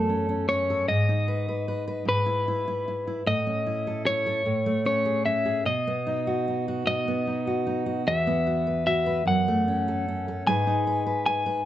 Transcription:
Already playing: steel-string acoustic guitar F#2 A3, clean electric guitar A4
0.09 steel-string acoustic guitar C#4
0.29 steel-string acoustic guitar C#4
0.49 steel-string acoustic guitar C#4, clean electric guitar C#5
0.70 steel-string acoustic guitar A4
0.88 steel-string acoustic guitar G#2, clean electric guitar D#5
1.09 steel-string acoustic guitar D#4
1.28 steel-string acoustic guitar B4
1.48 steel-string acoustic guitar B4
1.68 steel-string acoustic guitar B4
1.88 steel-string acoustic guitar B4
2.05 steel-string acoustic guitar G#2, clean electric guitar B4
2.26 steel-string acoustic guitar E4
2.48 steel-string acoustic guitar E4
2.68 steel-string acoustic guitar E4
2.88 steel-string acoustic guitar E4
3.07 steel-string acoustic guitar E4
3.26 steel-string acoustic guitar A2, clean electric guitar D#5
3.47 steel-string acoustic guitar C#4
3.67 steel-string acoustic guitar E4
3.87 steel-string acoustic guitar A4
4.07 steel-string acoustic guitar E4, clean electric guitar C#5
4.26 steel-string acoustic guitar A4
4.46 steel-string acoustic guitar A2
4.66 steel-string acoustic guitar A3
4.85 steel-string acoustic guitar C#4, clean electric guitar C#5
5.05 steel-string acoustic guitar G#4
5.26 steel-string acoustic guitar C#4, clean electric guitar E5
5.45 steel-string acoustic guitar G#4
5.65 steel-string acoustic guitar B2, clean electric guitar D#5
5.87 steel-string acoustic guitar B3
6.07 steel-string acoustic guitar D#4
6.27 steel-string acoustic guitar F#4
6.48 steel-string acoustic guitar D#4
6.68 steel-string acoustic guitar F#4
6.87 steel-string acoustic guitar B2, clean electric guitar D#5
7.08 steel-string acoustic guitar B3
7.27 steel-string acoustic guitar D#4
7.47 steel-string acoustic guitar F#4
7.67 steel-string acoustic guitar D#4
7.86 steel-string acoustic guitar F#4
8.06 steel-string acoustic guitar E2, clean electric guitar E5
8.27 steel-string acoustic guitar B3
8.47 steel-string acoustic guitar F#4
8.67 steel-string acoustic guitar B4
8.87 steel-string acoustic guitar F#4, clean electric guitar E5
9.06 steel-string acoustic guitar B4
9.25 steel-string acoustic guitar F#2, clean electric guitar F#5
9.48 steel-string acoustic guitar A3
9.68 steel-string acoustic guitar C#4
9.88 steel-string acoustic guitar A4
10.08 steel-string acoustic guitar C#4
10.28 steel-string acoustic guitar A4
10.47 steel-string acoustic guitar G#2 G#3 D#4 B4, clean electric guitar G#5
10.67 steel-string acoustic guitar D#4
10.87 steel-string acoustic guitar B4
11.07 steel-string acoustic guitar B4
11.26 steel-string acoustic guitar B4, clean electric guitar G#5
11.46 steel-string acoustic guitar B4

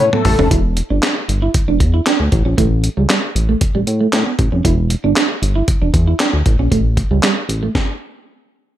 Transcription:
0.13 clean electric guitar B3, analog polysynth A4, mid tom
0.25 analog synth bass A1, muted clean electric guitar stroke, mid tom, open hi-hat
0.39 analog synth bass F1, clean electric guitar C#4, floor tom
0.51 analog synth bass E1, clean electric guitar E4, kick, closed hi-hat
0.77 muted clean electric guitar stroke, closed hi-hat
0.90 analog synth bass G1, clean electric guitar D4
1.03 clean electric guitar D4, snare, clap, closed hi-hat
1.28 analog synth bass G1, muted clean electric guitar stroke, closed hi-hat
1.42 clean electric guitar E4
1.54 kick, closed hi-hat
1.68 analog synth bass E1, clean electric guitar D4
1.80 analog synth bass E2, muted clean electric guitar stroke, kick, closed hi-hat
1.94 clean electric guitar E4
2.06 clean electric guitar D4, snare, clap, closed hi-hat
2.20 analog synth bass D2
2.32 analog synth bass A1, muted clean electric guitar stroke, kick, closed hi-hat
2.45 analog synth bass A#1, clean electric guitar C#4
2.58 analog synth bass A1, clean electric guitar A3, kick, closed hi-hat
2.84 muted clean electric guitar stroke, closed hi-hat
2.97 analog synth bass C#2, clean electric guitar G3
3.09 clean electric guitar G3, snare, clap, closed hi-hat
3.35 analog synth bass A1, muted clean electric guitar stroke, closed hi-hat
3.49 clean electric guitar A3
3.61 kick, closed hi-hat
3.75 analog synth bass A1, clean electric guitar G3
3.87 analog synth bass A2, muted clean electric guitar stroke, closed hi-hat
4.01 clean electric guitar A3
4.13 analog synth bass A2, snare, clap, closed hi-hat
4.26 clean electric guitar B3
4.39 analog synth bass A1, muted clean electric guitar stroke, kick, closed hi-hat
4.52 analog synth bass F1, clean electric guitar C#4
4.65 analog synth bass E1, clean electric guitar E4, kick, closed hi-hat
4.90 muted clean electric guitar stroke, closed hi-hat
5.04 analog synth bass G1, clean electric guitar D4
5.16 clean electric guitar D4, snare, clap, closed hi-hat
5.42 analog synth bass G1, muted clean electric guitar stroke, closed hi-hat
5.56 clean electric guitar E4
5.68 kick, closed hi-hat
5.82 analog synth bass E1, clean electric guitar D4
5.94 analog synth bass E2, muted clean electric guitar stroke, kick, closed hi-hat
6.07 clean electric guitar E4
6.19 clean electric guitar D4, snare, clap, closed hi-hat
6.33 analog synth bass D2
6.46 analog synth bass A1, muted clean electric guitar stroke, kick, closed hi-hat
6.59 analog synth bass A#1, clean electric guitar C#4
6.71 analog synth bass A1, clean electric guitar A3, kick, closed hi-hat
6.97 muted clean electric guitar stroke, kick, closed hi-hat
7.11 analog synth bass C#2, clean electric guitar G3
7.23 clean electric guitar G3, snare, clap, closed hi-hat
7.49 analog synth bass A1, muted clean electric guitar stroke, closed hi-hat
7.63 clean electric guitar A3
7.75 kick, snare

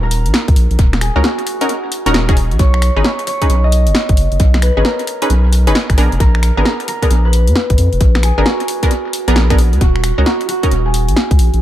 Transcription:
Already playing: sub bass D#1, harp D#4
0.03 harp A#4
0.11 open hi-hat
0.26 sub bass A#1, closed hi-hat
0.34 snare
0.48 sub bass C#2, kick, closed hi-hat
0.56 sub bass A#1, open hi-hat
0.71 sub bass A#1, closed hi-hat
0.79 sub bass D#1, kick, closed hi-hat
0.93 finger snap, snare
1.01 harp G#4, finger snap, open hi-hat
1.16 sub bass C#2, synth stab C#4 D#4 F#4 A#4
1.24 harp F#4, snare
1.39 closed hi-hat
1.47 open hi-hat
1.61 synth stab C#4 D#4 F#4 A#4, closed hi-hat
1.69 closed hi-hat
1.92 open hi-hat
2.06 sub bass D#1, synth stab C#4 D#4 F#4 A#4, closed hi-hat
2.14 snare
2.29 synth stab C#4 D#4 F#4 G#4, finger snap, kick, closed hi-hat
2.37 open hi-hat
2.51 sub bass B1, closed hi-hat
2.59 sub bass B1, harp C#5, kick, closed hi-hat
2.74 finger snap
2.82 finger snap, open hi-hat
2.96 sub bass G#1, synth stab C#4 D#4 G#4 B4
3.04 harp C#5, snare
3.19 closed hi-hat
3.27 harp C#5, open hi-hat
3.42 synth stab C#4 D#4 G#4 B4, kick, closed hi-hat
3.49 sub bass B1, closed hi-hat
3.64 harp D#5
3.72 open hi-hat
3.87 sub bass F#1, closed hi-hat
3.95 snare
4.09 sub bass G#1, kick, closed hi-hat
4.17 sub bass F#1, open hi-hat
4.32 sub bass F#1, closed hi-hat
4.40 sub bass B1, kick, closed hi-hat
4.54 finger snap, snare
4.62 harp B4, finger snap, open hi-hat
4.77 sub bass G#1, synth stab C#4 D#4 G#4 B4
4.85 harp A#4, snare
4.99 closed hi-hat
5.07 open hi-hat
5.22 synth stab C#4 D#4 G#4 B4, closed hi-hat
5.30 sub bass B1, closed hi-hat
5.53 open hi-hat
5.67 sub bass F#1, synth stab C#4 D#4 G#4 B4, closed hi-hat
5.75 snare
5.90 sub bass G#1, finger snap, kick, closed hi-hat
5.98 sub bass A#1, synth stab B3 D4 G#4 A#4, open hi-hat
6.12 sub bass F1, closed hi-hat
6.20 sub bass A#1, harp A#4, kick, closed hi-hat
6.35 finger snap
6.43 finger snap, open hi-hat
6.57 sub bass G#1, synth stab B3 D4 G#4 A#4
6.65 harp A#4, snare
6.80 closed hi-hat
6.88 harp A#4, open hi-hat
7.02 synth stab B3 D4 G#4 A#4, kick, closed hi-hat
7.11 sub bass A#1, closed hi-hat
7.25 harp B4
7.33 open hi-hat
7.47 sub bass F2, closed hi-hat
7.56 snare
7.70 sub bass G#1, kick, closed hi-hat
7.78 sub bass F2, open hi-hat
7.93 sub bass F1, closed hi-hat
8.01 sub bass A#1, kick, closed hi-hat
8.15 finger snap, snare
8.23 harp G#4, finger snap, open hi-hat
8.38 sub bass G#1, synth stab B3 D4 G#4 A#4
8.46 harp F#4, snare
8.60 closed hi-hat
8.68 open hi-hat
8.83 synth stab B3 D4 G#4 A#4, kick, closed hi-hat
8.91 closed hi-hat
9.13 open hi-hat
9.28 sub bass A#1, synth stab B3 D4 G#4 A#4, closed hi-hat
9.36 snare
9.50 synth stab B3 D4 G#4 A#4, finger snap, kick, closed hi-hat
9.59 open hi-hat
9.73 sub bass D2, closed hi-hat
9.81 sub bass D#1, harp F#4, kick, closed hi-hat
9.96 finger snap
10.04 finger snap, open hi-hat
10.18 sub bass C#2, synth stab C#4 D#4 F#4 A#4
10.26 harp F#4, snare
10.41 closed hi-hat
10.48 harp F#4, open hi-hat
10.63 synth stab C#4 D#4 F#4 A#4, kick, closed hi-hat
10.71 sub bass D#1, closed hi-hat
10.86 harp G#4
10.94 open hi-hat
11.08 sub bass A#1, closed hi-hat
11.16 snare
11.31 sub bass C#2, kick, closed hi-hat
11.39 sub bass A#1, open hi-hat
11.54 sub bass A#1, closed hi-hat

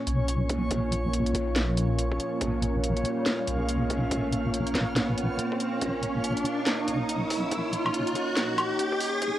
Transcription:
Already playing: ambient pad A#3 F4, synth texture C#4 C#5, riser
0.07 wobble bass B1, closed hi-hat
0.28 closed hi-hat
0.49 kick, closed hi-hat
0.71 wobble bass A#1, kick, closed hi-hat
0.92 closed hi-hat
1.14 closed hi-hat
1.26 closed hi-hat
1.35 wobble bass A#1, kick, closed hi-hat
1.56 snare, closed hi-hat
1.77 closed hi-hat
1.99 closed hi-hat
2.12 kick
2.20 closed hi-hat
2.41 wobble bass A#1, synth texture F5, kick, closed hi-hat
2.62 closed hi-hat
2.84 closed hi-hat
2.97 closed hi-hat
3.05 closed hi-hat
3.26 snare, closed hi-hat
3.47 wobble bass B1, closed hi-hat
3.69 closed hi-hat
3.90 kick, closed hi-hat
4.11 wobble bass A#1, kick, closed hi-hat
4.33 closed hi-hat
4.54 closed hi-hat
4.67 closed hi-hat
4.75 wobble bass A#1, kick, snare, closed hi-hat
4.96 snare, closed hi-hat
5.18 closed hi-hat
5.39 closed hi-hat
5.52 kick
5.60 closed hi-hat
5.81 wobble bass A#1, ambient pad D#4, synth texture C#5, kick, closed hi-hat
6.03 closed hi-hat
6.24 closed hi-hat
6.37 closed hi-hat
6.45 closed hi-hat
6.66 snare, clap, closed hi-hat
6.88 wobble bass B1, closed hi-hat
7.09 closed hi-hat
7.30 kick, open hi-hat
7.51 wobble bass A#1, kick, closed hi-hat
7.73 closed hi-hat
7.86 low woodblock
7.94 closed hi-hat
8.07 closed hi-hat
8.15 wobble bass A#1, kick, closed hi-hat
8.37 snare, clap, closed hi-hat
8.58 closed hi-hat, low woodblock
8.79 closed hi-hat
8.92 kick
9.00 open hi-hat
9.22 wobble bass A#1, kick, closed hi-hat

